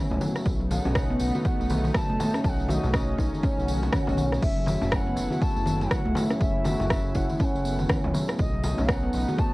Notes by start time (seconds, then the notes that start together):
Already playing: C#3 F#3 A3 C#4 E4
0.10 C#2, mid tom, muted conga, low conga
0.21 F#3, tambourine, high conga
0.36 cross-stick, tambourine, muted conga
0.46 B1 C#3 A3 B3 D#4, kick, tambourine
0.60 F#3
0.71 F#5, tambourine, muted conga, high conga, low conga
0.85 B1 C#4, tambourine, low conga
0.95 kick, cross-stick, tambourine, muted conga
1.10 B3
1.20 B1, tambourine, muted conga
1.35 F#4, tambourine, high conga
1.45 F#5, kick, tambourine, muted conga
1.60 B1 A3, tambourine
1.70 tambourine, high conga
1.84 F#3, tambourine, muted conga, high conga
1.94 A5, kick, cross-stick, mid tom, tambourine
2.09 F#1 A3, muted conga
2.20 tambourine, high conga, low conga
2.34 C#4, cross-stick, tambourine, muted conga
2.44 B1 C#4 A5, kick, tambourine
2.49 F#5
2.60 tambourine
2.68 F#4 E5, tambourine, muted conga, high conga, low conga
2.73 D#5
2.83 B1, tambourine, low conga
2.94 C#4, kick, cross-stick, tambourine, muted conga
3.18 B1 D#4, kick, tambourine, muted conga
3.33 tambourine, high conga
3.43 C#4, kick, tambourine, swell, muted conga
3.58 B1, tambourine
3.68 D#3, tambourine
3.82 tambourine, muted conga, high conga
3.92 C#4, kick, cross-stick, mid tom, tambourine, high conga
4.07 B1 C#4, mid tom, tambourine, muted conga, low conga
4.17 F#3, tambourine, high conga
4.32 cross-stick, tambourine, muted conga
4.42 F#1 F#3 A3 E4 E5, kick, crash, tambourine
4.57 F#3
4.66 tambourine, muted conga, high conga, low conga
4.81 F#1 C#4, tambourine, low conga
4.91 F#5 A5, kick, cross-stick, tambourine, muted conga
5.07 B3
5.16 F#1, tambourine, muted conga
5.30 F#4, tambourine, high conga
5.41 A5, kick, tambourine, muted conga
5.56 F#1 A3, tambourine
5.66 tambourine, high conga
5.81 F#3, tambourine, muted conga, high conga
5.91 F#5, kick, cross-stick, mid tom, tambourine
6.05 C#2 A3, muted conga
6.15 tambourine, high conga, low conga
6.30 C#4, cross-stick, tambourine, muted conga
6.41 F#1 E5, kick, tambourine
6.64 F#4, tambourine, muted conga, high conga, low conga
6.80 F#1, tambourine, low conga
6.90 C#4, kick, cross-stick, tambourine, muted conga
7.15 F#1 E4 F#5, kick, tambourine, muted conga
7.30 tambourine, high conga
7.39 C#4 A5, kick, tambourine, muted conga
7.44 F#5
7.54 F#1, tambourine
7.65 B3, tambourine
7.79 tambourine, muted conga, high conga
7.89 C#4, kick, cross-stick, mid tom, tambourine, high conga
8.04 C#2, mid tom, muted conga, low conga
8.14 F#3, tambourine, high conga
8.28 cross-stick, tambourine, muted conga
8.38 B1 B3 D#4 D#5, kick, tambourine
8.54 F#3
8.63 tambourine, muted conga, high conga, low conga
8.78 B1 C#4, tambourine, low conga
8.88 F#5, kick, cross-stick, tambourine, muted conga
9.03 B3
9.13 B1, tambourine, muted conga
9.28 F#4, tambourine, high conga
9.38 A5, kick, tambourine, muted conga